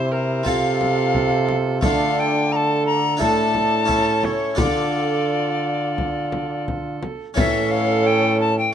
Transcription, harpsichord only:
Already playing: C3 C4 E4 G4
0.43 C3 C4 F4 A4
1.81 D3 A3 F4
3.17 A2 D4 E4 A4
3.85 C#4 E4 A4
4.55 D3 D4 F4 A4
7.34 A2 E3 C#4 A4

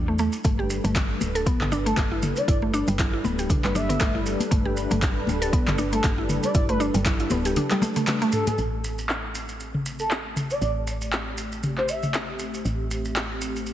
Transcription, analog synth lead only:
1.86 A4
2.37 D5
2.48 D5
3.65 B4
3.75 E5
5.93 A4
6.44 D5
6.54 D5
6.69 B4
8.33 A4
8.47 A4
9.99 A4
10.51 D5
10.62 D5
11.78 C5
11.89 E5

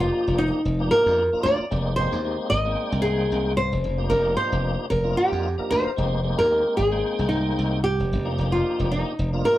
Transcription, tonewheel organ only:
Already playing: F3 A#3 D4 D#4 G4
0.79 F3 A#3 D4 D#4 G4
1.33 F3 A#3 D4 D#4 F4
1.71 G#3 A#3 C4 D#4 G4
1.98 G#3 A#3 C4 D#4 G4
2.25 G#3 A#3 C4 D#4 G4
2.65 G#3 A#3 C4 D#4 G5
3.98 F3 A#3 D4 D#4 G4
5.04 F3 A#3 D4 D#4 F4
5.58 F3 A#3 D4 D#4 A#4
5.97 G#3 A#3 C4 D#4 G4
6.23 G#3 A#3 C4 D#4 G4
6.50 G#3 A#3 C4 D#4 G4
6.91 G#3 A#3 C4 D#4 G5
8.24 F3 A#3 D4 D#4 G4
9.33 F3 A#3 D4 D#4 F4

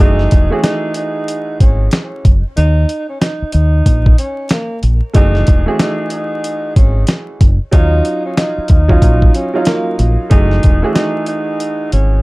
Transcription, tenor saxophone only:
0.00 D#4
0.52 C#4
0.62 D#4
0.96 D#4
1.60 C#4
2.57 D#4
3.09 C#4
3.20 D#4
3.53 D#4
4.18 C#4
4.51 A#3
5.15 D#4
5.67 C#4
5.80 D#4
6.11 D#4
6.76 C#4
7.73 D#4
8.26 C#4
8.37 D#4
8.70 D#4
9.35 C#4
9.66 A#3
10.30 D#4
10.84 C#4
10.95 D#4
11.28 D#4
11.93 C#4

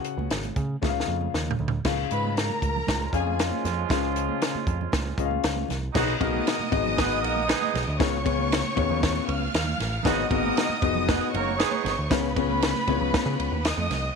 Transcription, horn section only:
2.87 F3 G#3 C#4 F4
5.93 F#3 B3 D#4 F#4
6.19 A#3 D#4 F#4 A#4
6.96 B3 F#4 G#4 B4
7.22 A#3 D#4 F#4 A#4
7.47 G#3 B3 D#4 G#4
10.04 F#3 B3 D#4 F#4
10.30 A#3 D#4 F#4 A#4
11.07 B3 F#4 G#4 B4
11.33 A#3 D#4 F#4 A#4
11.58 G#3 B3 D#4 G#4

